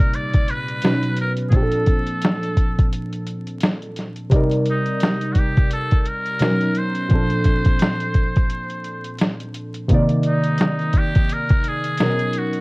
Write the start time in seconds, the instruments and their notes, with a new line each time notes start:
Already playing: synth keys A#2 C3 G3 D#4 D5, muted trumpet A#4
0.13 muted trumpet D5, closed hi-hat
0.33 kick, closed hi-hat
0.48 muted trumpet B4, closed hi-hat
0.68 closed hi-hat
0.82 synth keys B2 F#3 C#4, snare, closed hi-hat
0.86 synth keys D#4 B4
1.03 closed hi-hat
1.16 closed hi-hat
1.21 muted trumpet A#4
1.37 closed hi-hat
1.49 synth keys A#2 F3, muted trumpet G#4, kick, closed hi-hat
1.53 synth keys C4 D4 G4, muted trumpet A4
1.63 synth keys A4
1.72 closed hi-hat
1.86 kick, closed hi-hat
2.07 closed hi-hat
2.22 snare, closed hi-hat
2.43 closed hi-hat
2.57 kick, closed hi-hat
2.78 kick, closed hi-hat
2.92 closed hi-hat
3.12 closed hi-hat
3.26 closed hi-hat
3.47 closed hi-hat
3.60 snare, closed hi-hat
3.82 closed hi-hat
3.96 snare, closed hi-hat
4.16 closed hi-hat
4.30 synth keys C3 G3 D5, kick, closed hi-hat
4.35 synth keys D#4 A#4
4.51 closed hi-hat
4.66 closed hi-hat
4.70 muted trumpet D#4
4.86 closed hi-hat
5.00 snare, closed hi-hat
5.21 closed hi-hat
5.33 muted trumpet F#4, kick, closed hi-hat
5.39 muted trumpet G4
5.57 kick, closed hi-hat
5.71 muted trumpet A4, closed hi-hat
5.91 kick, closed hi-hat
6.02 muted trumpet A4, closed hi-hat
6.08 muted trumpet A#4
6.25 closed hi-hat
6.39 synth keys B2 F#3 C#4 D#4 A#4, snare, closed hi-hat
6.61 closed hi-hat
6.75 muted trumpet C5, closed hi-hat
6.95 closed hi-hat
7.09 synth keys A#2 F3 C4, kick, closed hi-hat
7.13 synth keys D4 A4
7.30 closed hi-hat
7.44 kick, closed hi-hat
7.65 kick, closed hi-hat
7.79 snare, closed hi-hat
8.00 closed hi-hat
8.14 kick, closed hi-hat
8.36 kick, closed hi-hat
8.50 closed hi-hat
8.70 closed hi-hat
8.84 closed hi-hat
9.05 closed hi-hat
9.19 snare, closed hi-hat
9.40 closed hi-hat
9.54 closed hi-hat
9.74 closed hi-hat
9.88 synth keys C3 D#3 A#3, kick, closed hi-hat
9.93 synth keys D#4 D5
10.09 closed hi-hat
10.23 closed hi-hat
10.28 muted trumpet D#4
10.44 closed hi-hat
10.58 snare, closed hi-hat
10.79 closed hi-hat
10.93 kick, closed hi-hat
10.98 muted trumpet G4
11.15 kick, closed hi-hat
11.29 muted trumpet A#4, closed hi-hat
11.49 kick, closed hi-hat
11.64 closed hi-hat
11.68 muted trumpet G#4
11.84 closed hi-hat
11.97 synth keys B2 F#3 C#4, snare, closed hi-hat
12.02 synth keys D#4 A#4
12.19 closed hi-hat
12.33 closed hi-hat
12.38 muted trumpet F#4
12.53 closed hi-hat